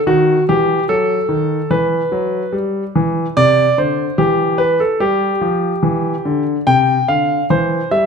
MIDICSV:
0, 0, Header, 1, 2, 480
1, 0, Start_track
1, 0, Tempo, 819672
1, 42, Time_signature, 4, 2, 24, 8
1, 2442, Tempo, 829876
1, 4693, End_track
2, 0, Start_track
2, 0, Title_t, "Grand piano"
2, 0, Program_c, 0, 0
2, 39, Note_on_c, 0, 51, 59
2, 41, Note_on_c, 0, 66, 87
2, 211, Note_off_c, 0, 51, 0
2, 244, Note_off_c, 0, 66, 0
2, 286, Note_on_c, 0, 67, 82
2, 287, Note_on_c, 0, 52, 49
2, 455, Note_off_c, 0, 52, 0
2, 484, Note_off_c, 0, 67, 0
2, 518, Note_on_c, 0, 54, 57
2, 521, Note_on_c, 0, 69, 82
2, 689, Note_off_c, 0, 54, 0
2, 754, Note_on_c, 0, 51, 54
2, 928, Note_off_c, 0, 51, 0
2, 998, Note_off_c, 0, 69, 0
2, 998, Note_on_c, 0, 52, 54
2, 999, Note_on_c, 0, 71, 83
2, 1172, Note_off_c, 0, 52, 0
2, 1240, Note_on_c, 0, 54, 57
2, 1414, Note_off_c, 0, 54, 0
2, 1479, Note_on_c, 0, 55, 54
2, 1483, Note_off_c, 0, 71, 0
2, 1654, Note_off_c, 0, 55, 0
2, 1730, Note_on_c, 0, 52, 65
2, 1902, Note_off_c, 0, 52, 0
2, 1972, Note_on_c, 0, 48, 63
2, 1972, Note_on_c, 0, 74, 108
2, 2142, Note_off_c, 0, 48, 0
2, 2208, Note_off_c, 0, 74, 0
2, 2213, Note_on_c, 0, 50, 50
2, 2215, Note_on_c, 0, 72, 69
2, 2380, Note_off_c, 0, 50, 0
2, 2446, Note_off_c, 0, 72, 0
2, 2448, Note_on_c, 0, 52, 51
2, 2448, Note_on_c, 0, 67, 82
2, 2680, Note_on_c, 0, 71, 85
2, 2681, Note_off_c, 0, 67, 0
2, 2790, Note_off_c, 0, 52, 0
2, 2799, Note_off_c, 0, 71, 0
2, 2807, Note_on_c, 0, 69, 67
2, 2922, Note_on_c, 0, 55, 56
2, 2924, Note_off_c, 0, 69, 0
2, 2924, Note_on_c, 0, 67, 84
2, 3096, Note_off_c, 0, 55, 0
2, 3161, Note_on_c, 0, 53, 59
2, 3337, Note_off_c, 0, 53, 0
2, 3400, Note_on_c, 0, 52, 61
2, 3576, Note_off_c, 0, 52, 0
2, 3647, Note_on_c, 0, 50, 63
2, 3744, Note_off_c, 0, 67, 0
2, 3819, Note_off_c, 0, 50, 0
2, 3887, Note_on_c, 0, 48, 62
2, 3887, Note_on_c, 0, 79, 103
2, 4059, Note_off_c, 0, 48, 0
2, 4125, Note_off_c, 0, 79, 0
2, 4128, Note_on_c, 0, 77, 81
2, 4130, Note_on_c, 0, 50, 48
2, 4301, Note_off_c, 0, 50, 0
2, 4330, Note_off_c, 0, 77, 0
2, 4369, Note_on_c, 0, 52, 58
2, 4370, Note_on_c, 0, 72, 87
2, 4539, Note_off_c, 0, 52, 0
2, 4606, Note_off_c, 0, 72, 0
2, 4608, Note_on_c, 0, 55, 55
2, 4608, Note_on_c, 0, 76, 89
2, 4693, Note_off_c, 0, 55, 0
2, 4693, Note_off_c, 0, 76, 0
2, 4693, End_track
0, 0, End_of_file